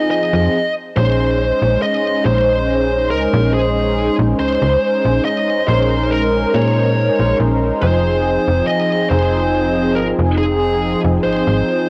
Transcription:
Already playing: analog polysynth F3 C4 D#4 G#4
0.11 lead electric guitar D#5
0.33 fm bass F2, analog polysynth F3 C4 D#4 G#4
0.95 fm bass A#1, analog polysynth G#3 C#4 D#4 C5, lead electric guitar C5
1.62 fm bass A#1
1.82 lead electric guitar D#5
2.24 fm bass A#1, analog polysynth G#3 C#4 D#4 C5, lead electric guitar C5
3.10 fm bass C#2, lead electric guitar A#4
3.33 fm bass A#1
3.54 lead electric guitar G#4
3.75 analog polysynth G#3 C#4 D#4 C5
4.19 fm bass A#1
4.38 fm bass C#2, analog polysynth G#3 C#4 D#4 C5, lead electric guitar C5
4.62 fm bass C#2
5.05 fm bass A#1
5.25 lead electric guitar D#5
5.66 fm bass A#1, analog polysynth G#3 C#4 D#4 A#4, lead electric guitar C5
6.11 lead electric guitar A#4
6.54 fm bass A#2, lead electric guitar C#5
7.18 fm bass A#1, analog polysynth G#3 C#4 D#4 C5
7.40 fm bass A#1
7.81 fm bass F1, analog polysynth F3 C4 D#4 G#4, lead electric guitar C5
8.48 fm bass F1
8.67 lead electric guitar D#5
9.09 fm bass F1, analog polysynth F3 C4 D#4 G#4, lead electric guitar C5
9.95 fm bass G#1, lead electric guitar A#4
10.19 fm bass F1
10.38 lead electric guitar G#4
10.61 analog polysynth F3 C4 D#4 G#4
11.04 fm bass F1
11.23 fm bass G#1, analog polysynth F3 C4 D#4 G#4, lead electric guitar C5
11.47 fm bass G#1

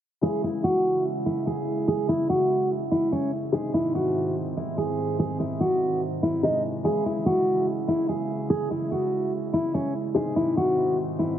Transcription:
0.21 felt piano C#3 E3 G#3 E4, analog synth pad C#3 G#3 E4, steel-string acoustic guitar G#4
0.44 steel-string acoustic guitar E4
0.64 steel-string acoustic guitar F#4
1.26 steel-string acoustic guitar E4
1.47 steel-string acoustic guitar G#4
1.88 steel-string acoustic guitar G#4
2.09 steel-string acoustic guitar E4
2.30 steel-string acoustic guitar F#4
2.91 steel-string acoustic guitar E4
3.12 steel-string acoustic guitar C#4
3.52 analog synth pad G#2 D#3 C4, felt piano C3 D#3 G#3 D#4, steel-string acoustic guitar G#4
3.74 steel-string acoustic guitar E4
3.95 steel-string acoustic guitar F#4
4.57 steel-string acoustic guitar E4
4.78 steel-string acoustic guitar G#4
5.19 steel-string acoustic guitar G#4
5.40 steel-string acoustic guitar E4
5.61 steel-string acoustic guitar F#4
6.23 steel-string acoustic guitar E4
6.43 felt piano C3 D#3 G#3 D#4, steel-string acoustic guitar D#4
6.84 felt piano C#3 E3 G#3 E4, analog synth pad C#3 G#3 E4, steel-string acoustic guitar G#4
7.06 steel-string acoustic guitar E4
7.26 steel-string acoustic guitar F#4
7.88 steel-string acoustic guitar E4
8.09 steel-string acoustic guitar G#4
8.50 steel-string acoustic guitar G#4
8.71 steel-string acoustic guitar E4
8.92 steel-string acoustic guitar F#4
9.53 steel-string acoustic guitar E4
9.74 steel-string acoustic guitar C#4
10.14 analog synth pad G#2 D#3 C4, felt piano C3 D#3 G#3 D#4, steel-string acoustic guitar G#4
10.36 steel-string acoustic guitar E4
10.57 steel-string acoustic guitar F#4
11.19 steel-string acoustic guitar E4

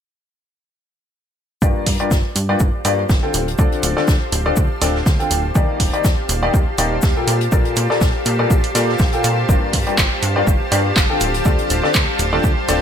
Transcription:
1.62 analog synth bass G1, grand piano G2 A#3 F4 G4 D5, ambient pad G4, kick, shaker
1.76 ambient pad C5 F5
1.86 analog synth bass G2, kick, open hi-hat
1.96 ambient pad A5, closed hi-hat
2.00 grand piano G2 A#3 F4 G4 D5
2.11 analog synth bass G1, kick, snare, shaker
2.36 analog synth bass G2, open hi-hat, shaker
2.49 grand piano G2 A#3 F4 G4 D5
2.60 analog synth bass G1, kick, shaker
2.85 analog synth bass G2, grand piano G2 A#3 F4 G4 D5, open hi-hat, shaker
3.09 analog synth bass G1, kick, snare, shaker
3.23 grand piano D3 C4 F4 A4 G5
3.34 analog synth bass D1, open hi-hat, shaker
3.48 closed hi-hat
3.58 analog synth bass D2, grand piano D3 C4 F4 A4 D5, kick, shaker
3.72 closed hi-hat
3.83 analog synth bass D1, open hi-hat, shaker
3.96 grand piano D3 C4 F4 A4 D5, snare
4.08 analog synth bass D2, kick, snare, shaker
4.32 analog synth bass D1, open hi-hat, shaker
4.46 grand piano D3 C4 F4 A4 D5
4.56 analog synth bass D2, kick, shaker
4.82 analog synth bass D1, grand piano D3 C4 F4 A4 D5, snare, open hi-hat, shaker
4.95 snare
5.06 analog synth bass D2, kick, snare, shaker
5.20 grand piano D3 C4 F4 A4 G5, closed hi-hat
5.31 analog synth bass D1, open hi-hat, shaker
5.55 analog synth bass D#2, grand piano D#3 A#3 D#4 G4 D5, kick, shaker
5.80 analog synth bass D#1, kick, open hi-hat
5.93 grand piano D#3 A#3 D#4 G4 D5, closed hi-hat
6.04 analog synth bass D#2, kick, snare, shaker
6.29 analog synth bass D#1, open hi-hat, shaker
6.43 grand piano D#3 A#3 D#4 G4 D5
6.54 analog synth bass D#2, kick, shaker
6.78 analog synth bass D#1, grand piano D#3 A#3 D#4 G4 D5, open hi-hat, shaker
7.02 analog synth bass D#2, kick, snare, shaker
7.16 grand piano A#2 A#3 F4 A4 G5
7.27 analog synth bass A#2, open hi-hat, shaker
7.41 closed hi-hat
7.52 analog synth bass A#1, grand piano A#2 A#3 F4 A4 D5, kick, shaker
7.65 closed hi-hat
7.76 analog synth bass A#2, open hi-hat, shaker
7.90 grand piano A#2 A#3 F4 A4 D5, snare
8.01 analog synth bass A#1, kick, snare, shaker
8.26 analog synth bass A#2, open hi-hat, shaker
8.39 grand piano A#2 A#3 F4 A4 D5
8.50 analog synth bass A#1, kick, shaker
8.64 open hi-hat
8.75 grand piano A#2 A#3 F4 A4 D5, analog synth bass A#2, snare, open hi-hat, shaker
8.89 snare
8.99 analog synth bass A#1, kick, snare, shaker
9.13 grand piano A#2 A#3 F4 A4 G5, closed hi-hat
9.24 analog synth bass A#2, open hi-hat, shaker
9.49 analog synth bass G1, grand piano G2 A#3 F4 G4 D5, kick, shaker
9.73 analog synth bass G2, kick, open hi-hat
9.87 grand piano G2 A#3 F4 G4 D5, closed hi-hat
9.98 analog synth bass G1, kick, snare, clap, shaker
10.22 analog synth bass G2, open hi-hat, shaker
10.36 grand piano G2 A#3 F4 G4 D5
10.47 analog synth bass G1, kick, shaker
10.72 grand piano G2 A#3 F4 G4 D5, analog synth bass G2, open hi-hat, shaker
10.96 analog synth bass G1, kick, snare, clap, shaker
11.10 grand piano D3 C4 F4 A4 G5
11.20 analog synth bass D1, open hi-hat, shaker
11.34 closed hi-hat
11.45 analog synth bass D2, grand piano D3 C4 F4 A4 D5, kick, shaker
11.59 closed hi-hat
11.70 analog synth bass D1, open hi-hat, shaker
11.83 grand piano D3 C4 F4 A4 D5, snare
11.94 analog synth bass D2, kick, snare, clap, shaker
12.19 analog synth bass D1, open hi-hat, shaker
12.33 grand piano D3 C4 F4 A4 D5
12.44 analog synth bass D2, kick, shaker
12.68 analog synth bass D1, grand piano D3 C4 F4 A4 D5, snare, open hi-hat, shaker

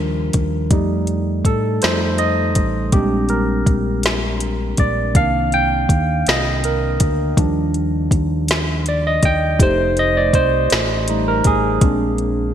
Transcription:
Already playing: fingered electric bass D#2, tine electric piano F3 G3 D4 A#4
0.33 fingered electric bass D#2, kick, closed hi-hat
0.71 fingered electric bass F2, tine electric piano G3 A3 D#4, kick, closed hi-hat
1.07 closed hi-hat
1.45 fingered electric bass A2, tine electric piano A4, kick, closed hi-hat
1.82 fingered electric bass F2, tine electric piano G3 A3 D#4 C5, snare, closed hi-hat
2.18 tine electric piano D#5, closed hi-hat
2.55 fingered electric bass A1, kick, closed hi-hat
2.92 fingered electric bass A#1, tine electric piano G3 G#3 C4 D4 G4, kick, closed hi-hat
3.29 tine electric piano A#4, closed hi-hat
3.66 fingered electric bass A#1, kick, closed hi-hat
4.03 snare, closed hi-hat
4.40 closed hi-hat
4.77 fingered electric bass A#1, tine electric piano D5, kick, closed hi-hat
5.15 fingered electric bass C2, tine electric piano D#3 A#3 D4 F5, kick, closed hi-hat
5.52 tine electric piano G5, closed hi-hat
5.89 fingered electric bass D#2, kick, closed hi-hat
6.27 fingered electric bass C2, tine electric piano D#5, snare, closed hi-hat
6.64 tine electric piano A#4, closed hi-hat
7.00 fingered electric bass D2, kick, closed hi-hat
7.37 fingered electric bass D#2, tine electric piano F3 G3 D4, kick, closed hi-hat
7.74 closed hi-hat
8.11 fingered electric bass D#2, kick, closed hi-hat
8.48 snare, closed hi-hat
8.86 tine electric piano D5, closed hi-hat
9.07 tine electric piano D#5
9.23 fingered electric bass D#2, tine electric piano G5, kick, closed hi-hat
9.59 fingered electric bass F1, tine electric piano A3 D#4 G4 C5, kick, closed hi-hat
9.97 tine electric piano D#5, closed hi-hat
10.17 tine electric piano D5
10.33 fingered electric bass C2, tine electric piano C5, kick, closed hi-hat
10.70 fingered electric bass A1, snare, closed hi-hat
11.08 tine electric piano G3 A3 D#4, closed hi-hat
11.28 tine electric piano A#4
11.44 fingered electric bass A1, tine electric piano G#4, kick, closed hi-hat
11.81 fingered electric bass A#1, tine electric piano G#3 C4 D4, kick, closed hi-hat
12.18 closed hi-hat

